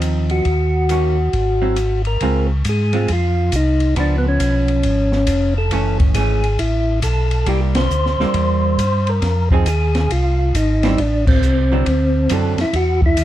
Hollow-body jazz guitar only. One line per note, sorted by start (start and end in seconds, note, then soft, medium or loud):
0.00 0.43 F3 soft
0.00 0.43 C4 medium
0.00 0.44 D#4 soft
0.90 1.15 D#3 soft
0.90 1.16 A#3 soft
0.90 1.16 C#4 soft
0.90 1.16 F#4 medium
1.61 1.75 F#3 medium
1.61 1.76 C4 medium
1.61 1.76 E4 medium
2.22 2.47 G#3 medium
2.22 2.47 C4 medium
2.22 2.48 F4 medium
2.93 3.07 G#3 soft
2.93 3.07 C4 medium
2.93 3.08 F4 medium
3.96 5.19 F3 medium
3.96 5.19 B3 medium
5.72 6.14 E3 medium
5.72 6.14 A3 medium
5.72 6.15 C#4 medium
6.15 6.41 E3 medium
6.15 6.41 A3 medium
6.15 6.42 C#4 medium
7.47 7.73 G3 medium
7.47 7.73 A#3 medium
7.47 7.73 E4 medium
8.20 8.76 G3 medium
8.20 8.76 A#3 medium
8.20 8.76 E4 medium
9.52 9.65 F3 medium
9.52 9.65 C4 medium
9.52 9.66 D#4 medium
9.52 9.66 G#4 medium
10.84 10.97 G3 medium
10.84 10.97 C4 medium
10.84 10.97 E4 medium
11.72 11.85 D3 medium
11.72 11.85 F#3 medium
11.72 11.85 C4 medium
11.72 11.85 E4 medium
12.30 12.55 D3 medium
12.30 12.56 F#3 medium
12.30 12.56 C4 medium
12.30 12.56 E4 medium